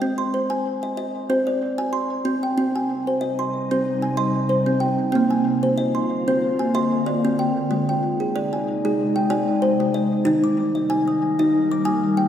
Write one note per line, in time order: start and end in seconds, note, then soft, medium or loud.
0.00 0.34 C4 medium
0.00 0.19 D#5 medium
0.18 0.65 C6 medium
0.34 0.84 C5 soft
0.50 0.83 G#5 medium
0.83 0.96 D#5 soft
0.97 1.30 D#5 medium
1.30 1.62 C4 medium
1.30 1.80 C5 medium
1.47 1.94 D5 medium
1.78 2.11 G#5 medium
1.93 2.43 C6 medium
2.25 2.56 C4 medium
2.43 2.76 G5 soft
2.57 5.11 C3 medium
2.57 5.11 G3 medium
2.57 2.90 C4 medium
2.57 5.12 D#4 medium
2.76 3.22 G#5 medium
3.07 3.54 C5 medium
3.21 3.54 D#5 medium
3.39 3.86 C6 soft
3.71 4.04 C4 medium
3.71 4.18 C5 medium
4.02 4.50 G#5 medium
4.17 4.50 D#5 medium
4.17 4.67 C6 medium
4.49 4.99 C5 medium
4.66 4.99 C4 medium
4.80 5.31 G5 medium
5.12 7.68 D3 medium
5.12 7.68 A#3 medium
5.12 7.67 A#3 medium
5.12 5.45 C4 medium
5.12 7.68 F4 medium
5.31 5.78 G#5 medium
5.63 6.10 C5 medium
5.78 6.10 D#5 medium
5.95 6.42 C6 soft
6.28 6.60 C4 medium
6.28 6.74 C5 medium
6.59 7.06 G#5 medium
6.75 7.06 D#5 medium
6.75 7.24 C6 medium
7.06 7.56 D5 medium
7.25 7.56 C4 medium
7.39 7.88 G5 medium
7.70 10.23 C3 medium
7.70 10.24 G#3 medium
7.70 8.84 G#3 medium
7.70 10.23 D#4 medium
7.89 8.35 G5 medium
8.20 8.66 G#4 medium
8.36 8.67 D5 medium
8.53 8.99 G#5 soft
8.85 9.16 G#3 medium
8.85 9.31 G#4 medium
9.16 9.62 G5 medium
9.30 9.62 D5 medium
9.30 9.80 G#5 medium
9.62 10.12 C5 medium
9.80 10.12 G#3 medium
9.94 10.44 D#5 medium
10.25 12.28 D#3 medium
10.25 12.28 G3 medium
10.25 12.28 A#3 medium
10.25 10.58 D#4 medium
10.44 10.90 D6 soft
10.75 11.22 D#5 medium
10.90 11.22 G#5 medium
11.08 11.54 D#6 soft
11.39 11.71 D#4 medium
11.39 11.86 D#5 medium
11.71 12.18 D6 medium
11.85 12.17 G#5 medium
11.85 12.28 D#6 medium
12.17 12.28 G5 medium